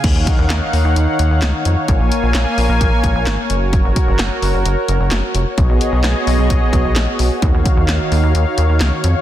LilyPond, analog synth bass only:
\new Staff \with { instrumentName = "Analog synth bass" } { \clef bass \time 4/4 \key ees \minor \tempo 4 = 130 ees,16 ees,16 r16 ees,16 ees,16 r16 ees,16 ees,16 ees,16 r16 ees,16 ees,16 des,16 r16 f,16 r16 | bes,,16 bes,,16 r16 bes,,16 bes,,16 r16 bes,,16 bes,,16 bes,,16 r16 bes,,16 bes,,16 aes,,16 r16 ges,,8~ | ges,,16 ges,,16 r16 ges,,16 ges,,16 r16 ges,,16 ges,,16 ges,,16 r16 ges,,16 ges,,16 ges,,16 r16 f,,16 r16 | b,,16 b,,16 r16 b,,16 b,,16 r16 b,,16 b,,16 b,,16 r16 b,,16 b,,16 bes,,16 r16 b,,16 r16 |
ees,16 ees,16 r16 ees,16 ees,16 r16 ees,16 ees,16 ees,16 r16 ees,16 ees,16 des,16 r16 f,16 r16 | }